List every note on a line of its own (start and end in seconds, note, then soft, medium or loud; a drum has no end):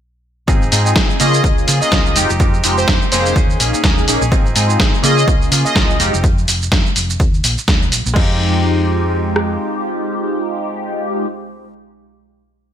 0.48 0.68 G#1 loud
0.48 0.70 F3 medium
0.48 0.62 C4 medium
0.48 0.71 C4 medium
0.48 0.62 D#4 medium
0.48 0.72 D#4 loud
0.48 0.63 F4 medium
0.48 0.63 G#4 medium
0.48 0.73 G#4 loud
0.48 kick loud
0.48 shaker soft
0.62 shaker soft
0.71 0.92 G#2 medium
0.71 0.85 F3 medium
0.71 1.17 C4 medium
0.71 0.86 C4 medium
0.71 1.18 D#4 medium
0.71 0.85 D#4 medium
0.71 1.18 F4 medium
0.71 1.18 G#4 medium
0.71 0.84 G#4 medium
0.71 open hi-hat loud
0.71 shaker medium
0.85 0.95 C4 medium
0.85 0.95 D#4 medium
0.85 0.96 G#4 medium
0.85 shaker soft
0.96 1.07 G#1 medium
0.96 1.09 F3 medium
0.96 1.10 C4 medium
0.96 1.09 D#4 medium
0.96 1.08 G#4 loud
0.96 kick loud
0.96 snare loud
0.96 shaker soft
1.09 1.20 C4 soft
1.09 1.20 D#4 medium
1.09 1.20 G#4 medium
1.09 shaker soft
1.19 1.40 C#3 medium
1.19 1.33 F3 medium
1.19 1.89 A#3 medium
1.19 1.34 A#3 medium
1.19 1.90 C#4 medium
1.19 1.90 F4 medium
1.19 1.33 F4 medium
1.19 1.90 G#4 loud
1.19 1.32 G#4 medium
1.19 1.42 D#5 loud
1.19 open hi-hat medium
1.19 shaker medium
1.33 1.67 A#3 soft
1.33 1.68 F4 medium
1.33 1.68 G#4 medium
1.33 shaker soft
1.44 1.64 C#2 medium
1.44 kick loud
1.44 shaker soft
1.58 shaker soft
1.67 1.79 C#3 medium
1.67 1.81 F3 medium
1.67 1.82 A#3 medium
1.67 1.81 F4 medium
1.67 1.80 G#4 medium
1.67 open hi-hat loud
1.67 shaker medium
1.81 1.91 A#3 medium
1.81 1.92 F4 medium
1.81 1.92 G#4 medium
1.81 2.16 D#5 loud
1.81 muted fingered electric bass stroke soft
1.81 shaker soft
1.92 2.18 C#2 loud
1.92 2.13 A#3 medium
1.92 2.14 C#4 medium
1.92 2.14 F4 medium
1.92 2.14 G#4 loud
1.92 kick loud
1.92 snare loud
1.92 shaker soft
2.06 shaker soft
2.15 2.27 F1 loud
2.15 2.29 G#3 medium
2.15 2.30 G#3 medium
2.15 2.30 C4 medium
2.15 2.30 D#4 medium
2.15 2.29 D#4 medium
2.15 2.31 F4 medium
2.15 2.31 G4 loud
2.15 2.28 G4 medium
2.15 open hi-hat medium
2.15 shaker medium
2.29 2.38 F1 loud
2.29 2.39 C4 soft
2.29 2.40 D#4 medium
2.29 2.40 G4 medium
2.29 shaker soft
2.40 2.60 F2 medium
2.40 2.63 G#3 medium
2.40 2.54 G#3 medium
2.40 2.63 C4 medium
2.40 2.55 D#4 medium
2.40 2.64 D#4 loud
2.40 2.55 F4 medium
2.40 2.55 G4 medium
2.40 2.65 G4 medium
2.40 kick loud
2.40 shaker soft
2.54 shaker soft
2.64 2.84 F1 medium
2.64 2.77 G#3 medium
2.64 3.10 G#3 medium
2.64 2.78 C4 medium
2.64 3.10 D#4 medium
2.64 2.77 D#4 medium
2.64 3.10 F4 medium
2.64 3.10 G4 medium
2.64 2.76 G4 medium
2.64 open hi-hat loud
2.64 shaker medium
2.77 2.87 C4 medium
2.77 2.88 D#4 medium
2.77 2.88 G4 medium
2.77 2.98 C5 medium
2.77 shaker soft
2.88 2.99 F2 medium
2.88 3.02 G#3 medium
2.88 3.02 C4 loud
2.88 3.02 D#4 medium
2.88 3.00 G4 loud
2.88 kick loud
2.88 snare loud
2.88 shaker soft
3.02 3.11 C4 medium
3.02 3.12 D#4 medium
3.02 3.12 G4 medium
3.02 shaker soft
3.12 3.32 F1 medium
3.12 3.25 G#3 medium
3.12 3.81 A#3 medium
3.12 3.26 C4 medium
3.12 3.82 C#4 medium
3.12 3.82 D#4 medium
3.12 3.25 D#4 medium
3.12 3.24 G4 medium
3.12 3.82 G#4 loud
3.12 3.41 C5 loud
3.12 open hi-hat loud
3.12 shaker medium
3.25 3.35 C4 medium
3.25 3.36 D#4 medium
3.25 3.36 G4 medium
3.25 shaker soft
3.36 3.56 D#2 medium
3.36 3.58 A#3 medium
3.36 3.60 C#4 medium
3.36 3.61 G#4 loud
3.36 kick loud
3.36 shaker soft
3.50 shaker soft
3.60 3.71 A#1 medium
3.60 3.73 A#3 medium
3.60 3.74 C#4 medium
3.60 3.72 G#4 medium
3.60 open hi-hat loud
3.60 shaker medium
3.73 3.83 C#4 medium
3.73 3.84 G#4 medium
3.73 shaker soft
3.84 4.08 D#2 loud
3.84 4.06 A#3 medium
3.84 4.05 A#3 medium
3.84 4.06 C#4 medium
3.84 4.07 C#4 loud
3.84 4.06 D#4 medium
3.84 4.06 G#4 loud
3.84 4.08 G#4 loud
3.84 kick loud
3.84 snare loud
3.84 shaker soft
3.98 shaker soft
4.07 4.19 A#1 loud
4.07 4.21 A#3 medium
4.07 4.22 A#3 medium
4.07 4.23 C#4 medium
4.07 4.22 C#4 medium
4.07 4.23 D#4 medium
4.07 4.23 G#4 loud
4.07 4.20 G#4 medium
4.07 open hi-hat loud
4.07 shaker medium
4.21 4.30 A#1 loud
4.21 4.32 C#4 soft
4.21 4.32 G#4 medium
4.21 shaker soft
4.31 4.54 F3 medium
4.31 4.46 C4 medium
4.31 4.55 C4 loud
4.31 4.46 D#4 medium
4.31 4.55 D#4 medium
4.31 4.46 F4 medium
4.31 4.46 G#4 medium
4.31 4.56 G#4 medium
4.31 kick loud
4.31 shaker soft
4.46 shaker soft
4.55 4.76 G#2 medium
4.55 4.69 F3 medium
4.55 5.01 C4 medium
4.55 4.70 C4 medium
4.55 5.01 D#4 medium
4.55 4.69 D#4 medium
4.55 5.01 F4 medium
4.55 5.02 G#4 medium
4.55 4.67 G#4 medium
4.55 open hi-hat loud
4.55 shaker medium
4.69 4.79 C4 medium
4.69 4.79 D#4 medium
4.69 4.80 G#4 medium
4.69 shaker soft
4.79 4.91 G#1 medium
4.79 4.93 F3 medium
4.79 4.94 C4 loud
4.79 4.93 D#4 loud
4.79 4.92 G#4 medium
4.79 kick loud
4.79 snare loud
4.79 shaker soft
4.93 5.04 C4 soft
4.93 5.04 D#4 medium
4.93 5.04 G#4 medium
4.93 shaker soft
5.02 5.23 C#3 medium
5.02 5.17 F3 medium
5.02 5.73 A#3 medium
5.02 5.18 A#3 medium
5.02 5.73 C#4 medium
5.02 5.73 F4 medium
5.02 5.17 F4 medium
5.02 5.74 G#4 loud
5.02 5.15 G#4 medium
5.02 5.25 D#5 loud
5.02 open hi-hat loud
5.02 shaker medium
5.17 5.51 A#3 medium
5.17 5.52 F4 medium
5.17 5.52 G#4 medium
5.17 shaker soft
5.28 5.48 C#2 medium
5.28 kick loud
5.28 shaker soft
5.42 shaker soft
5.51 5.63 C#3 medium
5.51 5.65 F3 medium
5.51 5.66 A#3 medium
5.51 5.65 F4 medium
5.51 5.64 G#4 medium
5.51 open hi-hat loud
5.51 shaker medium
5.65 5.74 A#3 soft
5.65 5.75 F4 medium
5.65 5.76 G#4 medium
5.65 6.00 D#5 medium
5.65 muted fingered electric bass stroke soft
5.65 shaker soft
5.75 6.01 C#2 loud
5.75 5.99 F3 loud
5.75 5.97 A#3 medium
5.75 6.00 A#3 medium
5.75 5.97 C#4 medium
5.75 5.97 F4 medium
5.75 6.00 F4 loud
5.75 5.98 G#4 loud
5.75 6.00 G#4 loud
5.75 kick loud
5.75 snare loud
5.75 shaker soft
5.90 shaker soft
5.99 6.11 F1 loud
5.99 6.13 G#3 medium
5.99 6.14 G#3 medium
5.99 6.14 C4 medium
5.99 6.14 D#4 medium
5.99 6.13 D#4 medium
5.99 6.14 F4 medium
5.99 6.14 G4 loud
5.99 6.12 G4 medium
5.99 open hi-hat loud
5.99 shaker medium
6.13 6.22 F1 loud
6.13 6.25 C4 medium
6.13 6.24 D#4 medium
6.13 6.24 G4 medium
6.13 shaker soft
6.24 kick loud
6.24 shaker soft
6.38 shaker soft
6.48 6.68 F1 medium
6.48 open hi-hat loud
6.48 shaker medium
6.62 shaker soft
6.72 6.83 F2 medium
6.72 kick loud
6.72 snare loud
6.72 shaker soft
6.86 shaker soft
6.96 7.16 F1 medium
6.96 open hi-hat medium
6.96 shaker medium
7.10 shaker soft
7.20 7.40 D#2 medium
7.20 kick loud
7.20 shaker soft
7.34 shaker soft
7.44 7.55 A#1 medium
7.44 open hi-hat loud
7.44 shaker medium
7.58 muted fingered electric bass stroke soft
7.58 shaker soft
7.68 7.92 D#2 loud
7.68 kick loud
7.68 snare loud
7.68 shaker soft
7.82 shaker soft
7.92 8.03 A#1 loud
7.92 open hi-hat loud
7.92 shaker medium
8.06 8.14 A#1 loud
8.06 shaker soft
8.14 9.56 F2 medium
8.14 11.64 G#3 medium
8.14 11.25 G#3 medium
8.14 11.67 C4 medium
8.14 11.26 D#4 medium
8.14 11.27 F4 medium
8.14 11.28 G4 loud
8.14 kick loud
8.14 crash medium
8.20 11.70 D#4 loud
8.20 11.72 G4 medium
9.36 cross-stick medium